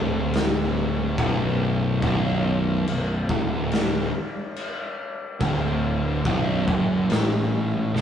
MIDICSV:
0, 0, Header, 1, 4, 480
1, 0, Start_track
1, 0, Key_signature, 2, "minor"
1, 0, Tempo, 843882
1, 1154, Time_signature, 4, 2, 24, 8
1, 4557, End_track
2, 0, Start_track
2, 0, Title_t, "Distorted electric guitar"
2, 0, Program_c, 0, 30
2, 0, Note_on_c, 0, 38, 105
2, 666, Note_off_c, 0, 38, 0
2, 677, Note_on_c, 0, 35, 102
2, 1148, Note_off_c, 0, 35, 0
2, 1157, Note_on_c, 0, 35, 104
2, 1628, Note_off_c, 0, 35, 0
2, 1637, Note_on_c, 0, 35, 76
2, 1828, Note_off_c, 0, 35, 0
2, 1874, Note_on_c, 0, 38, 102
2, 2346, Note_off_c, 0, 38, 0
2, 3075, Note_on_c, 0, 38, 107
2, 3547, Note_off_c, 0, 38, 0
2, 3560, Note_on_c, 0, 35, 118
2, 3789, Note_off_c, 0, 35, 0
2, 3794, Note_on_c, 0, 42, 100
2, 4026, Note_off_c, 0, 42, 0
2, 4038, Note_on_c, 0, 45, 106
2, 4509, Note_off_c, 0, 45, 0
2, 4515, Note_on_c, 0, 35, 102
2, 4557, Note_off_c, 0, 35, 0
2, 4557, End_track
3, 0, Start_track
3, 0, Title_t, "Picked electric bass"
3, 0, Program_c, 1, 34
3, 0, Note_on_c, 1, 26, 95
3, 650, Note_off_c, 1, 26, 0
3, 675, Note_on_c, 1, 23, 107
3, 1132, Note_off_c, 1, 23, 0
3, 1152, Note_on_c, 1, 23, 83
3, 1610, Note_off_c, 1, 23, 0
3, 1632, Note_on_c, 1, 23, 85
3, 1856, Note_off_c, 1, 23, 0
3, 1874, Note_on_c, 1, 26, 94
3, 2331, Note_off_c, 1, 26, 0
3, 3076, Note_on_c, 1, 26, 90
3, 3532, Note_off_c, 1, 26, 0
3, 3559, Note_on_c, 1, 23, 100
3, 3779, Note_off_c, 1, 23, 0
3, 3797, Note_on_c, 1, 30, 91
3, 4019, Note_off_c, 1, 30, 0
3, 4034, Note_on_c, 1, 33, 99
3, 4491, Note_off_c, 1, 33, 0
3, 4512, Note_on_c, 1, 23, 93
3, 4557, Note_off_c, 1, 23, 0
3, 4557, End_track
4, 0, Start_track
4, 0, Title_t, "Drums"
4, 191, Note_on_c, 9, 49, 63
4, 203, Note_on_c, 9, 38, 116
4, 247, Note_off_c, 9, 49, 0
4, 260, Note_off_c, 9, 38, 0
4, 672, Note_on_c, 9, 36, 110
4, 674, Note_on_c, 9, 49, 61
4, 729, Note_off_c, 9, 36, 0
4, 731, Note_off_c, 9, 49, 0
4, 1151, Note_on_c, 9, 36, 103
4, 1151, Note_on_c, 9, 49, 60
4, 1207, Note_off_c, 9, 49, 0
4, 1208, Note_off_c, 9, 36, 0
4, 1635, Note_on_c, 9, 49, 59
4, 1692, Note_off_c, 9, 49, 0
4, 1873, Note_on_c, 9, 36, 111
4, 1930, Note_off_c, 9, 36, 0
4, 2113, Note_on_c, 9, 49, 59
4, 2126, Note_on_c, 9, 38, 102
4, 2170, Note_off_c, 9, 49, 0
4, 2183, Note_off_c, 9, 38, 0
4, 2596, Note_on_c, 9, 49, 62
4, 2653, Note_off_c, 9, 49, 0
4, 3075, Note_on_c, 9, 49, 65
4, 3076, Note_on_c, 9, 36, 111
4, 3132, Note_off_c, 9, 36, 0
4, 3132, Note_off_c, 9, 49, 0
4, 3557, Note_on_c, 9, 36, 101
4, 3558, Note_on_c, 9, 49, 57
4, 3614, Note_off_c, 9, 36, 0
4, 3615, Note_off_c, 9, 49, 0
4, 3798, Note_on_c, 9, 36, 113
4, 3855, Note_off_c, 9, 36, 0
4, 4037, Note_on_c, 9, 49, 64
4, 4049, Note_on_c, 9, 38, 115
4, 4094, Note_off_c, 9, 49, 0
4, 4106, Note_off_c, 9, 38, 0
4, 4528, Note_on_c, 9, 38, 64
4, 4557, Note_off_c, 9, 38, 0
4, 4557, End_track
0, 0, End_of_file